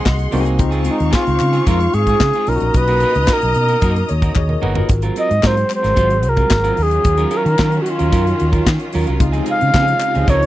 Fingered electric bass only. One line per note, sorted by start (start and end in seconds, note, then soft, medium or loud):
0.07 0.25 C2 medium
0.33 0.60 C2 loud
0.60 0.88 C#2 medium
1.01 1.10 D#2 medium
1.28 1.37 C#2 loud
1.41 1.60 C#3 medium
1.67 1.86 F2 medium
1.94 2.13 G#2 loud
2.21 2.30 C#3 medium
2.48 2.57 B1 loud
2.61 2.71 A#1 medium
2.75 3.03 B1 medium
3.16 3.25 C#2 loud
3.43 3.52 B1 medium
3.56 3.75 B2 medium
3.82 4.01 F#2 medium
4.11 4.29 D#2 medium
4.36 4.55 D#2 medium
4.64 4.82 G1 loud
4.90 5.09 G#1 loud
5.31 5.40 G#2 medium
5.44 5.63 G#2 medium
5.84 5.94 G#1 medium
5.98 6.25 G#1 medium
6.25 6.44 C2 medium
6.51 6.70 G#1 loud
6.78 6.97 D#2 loud
7.05 7.24 D#2 loud
7.46 7.55 D#3 medium
7.59 7.78 D#3 medium
8.01 8.10 D#2 medium
8.13 8.32 F#2 medium
8.41 8.60 D#2 medium
8.67 8.76 D#3 medium
8.95 9.04 D#2 loud
9.08 9.17 C2 medium
9.21 9.39 C#2 loud
9.62 9.71 C#3 loud
9.74 9.93 C#3 medium
10.16 10.25 C#2 medium
10.28 10.46 C#2 medium